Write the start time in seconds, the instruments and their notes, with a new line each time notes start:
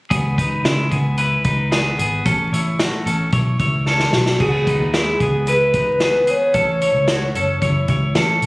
0.10 picked electric bass C#2, clean electric guitar B3 G#4, kick, closed hi-hat
0.38 clean electric guitar D#4 B4, kick, closed hi-hat
0.65 picked electric bass C#3, clean electric guitar G#3 E4, snare, closed hi-hat
0.91 picked electric bass C#2, clean electric guitar B3 G#4, kick, closed hi-hat
1.18 clean electric guitar E4 B4, closed hi-hat
1.44 picked electric bass C#2, clean electric guitar D#4 B4, kick, closed hi-hat
1.71 clean electric guitar B3 G#4, snare, closed hi-hat
1.99 picked electric bass G#1, clean electric guitar B3 G#4, closed hi-hat
2.25 picked electric bass A1, clean electric guitar C#4 A4, kick, closed hi-hat
2.52 picked electric bass A1, clean electric guitar E4 C#5, closed hi-hat
2.80 clean electric guitar A3 F#4, snare, closed hi-hat
3.06 picked electric bass A1, clean electric guitar C#4 A4, closed hi-hat
3.32 picked electric bass B1, clean electric guitar E4 C#5, kick, closed hi-hat
3.59 picked electric bass C#2, clean electric guitar E4 C#5, kick, closed hi-hat
3.86 clean electric guitar C#4 A4, snare
3.99 snare
4.13 picked electric bass B1, soft synth lead F#4, snare
4.26 snare
4.40 picked electric bass C#2, clean electric guitar B3 G#4, soft synth lead G#4, kick, crash
4.67 clean electric guitar D#4 B4, kick, closed hi-hat
4.80 picked electric bass D#2
4.94 clean electric guitar G#3 E4, soft synth lead G#4, snare, closed hi-hat
5.20 picked electric bass C#2, clean electric guitar B3 G#4, kick, closed hi-hat
5.47 clean electric guitar E4 B4, soft synth lead B4, closed hi-hat
5.73 clean electric guitar D#4 B4, kick, closed hi-hat
5.89 soft synth lead B4
6.00 clean electric guitar B3 G#4, snare, closed hi-hat
6.27 clean electric guitar B3 G#4, soft synth lead C#5, closed hi-hat
6.54 picked electric bass A1, clean electric guitar C#4 A4, kick, closed hi-hat
6.82 clean electric guitar E4 C#5, closed hi-hat
6.95 picked electric bass C#2
7.08 clean electric guitar A3 F#4, snare, closed hi-hat
7.35 picked electric bass F#1, clean electric guitar C#4 A4, closed hi-hat
7.62 picked electric bass F#1, clean electric guitar E4 C#5, kick, closed hi-hat
7.88 picked electric bass C#2, clean electric guitar E4 C#5, kick, closed hi-hat
8.15 picked electric bass A1, clean electric guitar C#4 A4, snare, closed hi-hat
8.42 picked electric bass B1, closed hi-hat